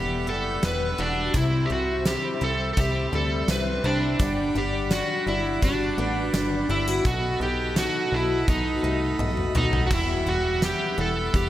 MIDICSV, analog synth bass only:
0, 0, Header, 1, 2, 480
1, 0, Start_track
1, 0, Tempo, 714286
1, 901, Time_signature, 4, 2, 24, 8
1, 7724, End_track
2, 0, Start_track
2, 0, Title_t, "Analog synth bass"
2, 0, Program_c, 0, 38
2, 0, Note_on_c, 0, 28, 92
2, 183, Note_on_c, 0, 30, 90
2, 193, Note_off_c, 0, 28, 0
2, 393, Note_off_c, 0, 30, 0
2, 421, Note_on_c, 0, 28, 103
2, 632, Note_off_c, 0, 28, 0
2, 663, Note_on_c, 0, 28, 108
2, 873, Note_off_c, 0, 28, 0
2, 901, Note_on_c, 0, 36, 116
2, 1112, Note_off_c, 0, 36, 0
2, 1143, Note_on_c, 0, 36, 95
2, 1459, Note_off_c, 0, 36, 0
2, 1622, Note_on_c, 0, 36, 97
2, 1833, Note_off_c, 0, 36, 0
2, 1864, Note_on_c, 0, 36, 91
2, 2074, Note_off_c, 0, 36, 0
2, 2098, Note_on_c, 0, 38, 83
2, 2311, Note_off_c, 0, 38, 0
2, 2338, Note_on_c, 0, 36, 85
2, 2551, Note_off_c, 0, 36, 0
2, 2578, Note_on_c, 0, 36, 109
2, 2791, Note_off_c, 0, 36, 0
2, 2820, Note_on_c, 0, 31, 105
2, 3032, Note_off_c, 0, 31, 0
2, 3057, Note_on_c, 0, 31, 89
2, 3376, Note_off_c, 0, 31, 0
2, 3539, Note_on_c, 0, 31, 95
2, 3751, Note_off_c, 0, 31, 0
2, 3778, Note_on_c, 0, 31, 78
2, 3991, Note_off_c, 0, 31, 0
2, 4017, Note_on_c, 0, 33, 86
2, 4230, Note_off_c, 0, 33, 0
2, 4256, Note_on_c, 0, 31, 90
2, 4470, Note_off_c, 0, 31, 0
2, 4497, Note_on_c, 0, 31, 103
2, 4710, Note_off_c, 0, 31, 0
2, 4737, Note_on_c, 0, 35, 112
2, 4950, Note_off_c, 0, 35, 0
2, 4972, Note_on_c, 0, 35, 90
2, 5293, Note_off_c, 0, 35, 0
2, 5457, Note_on_c, 0, 35, 88
2, 5670, Note_off_c, 0, 35, 0
2, 5698, Note_on_c, 0, 35, 78
2, 5911, Note_off_c, 0, 35, 0
2, 5935, Note_on_c, 0, 36, 83
2, 6149, Note_off_c, 0, 36, 0
2, 6176, Note_on_c, 0, 35, 92
2, 6390, Note_off_c, 0, 35, 0
2, 6415, Note_on_c, 0, 35, 101
2, 6629, Note_off_c, 0, 35, 0
2, 6658, Note_on_c, 0, 28, 108
2, 6870, Note_off_c, 0, 28, 0
2, 6896, Note_on_c, 0, 28, 81
2, 7215, Note_off_c, 0, 28, 0
2, 7377, Note_on_c, 0, 28, 91
2, 7590, Note_off_c, 0, 28, 0
2, 7619, Note_on_c, 0, 28, 94
2, 7724, Note_off_c, 0, 28, 0
2, 7724, End_track
0, 0, End_of_file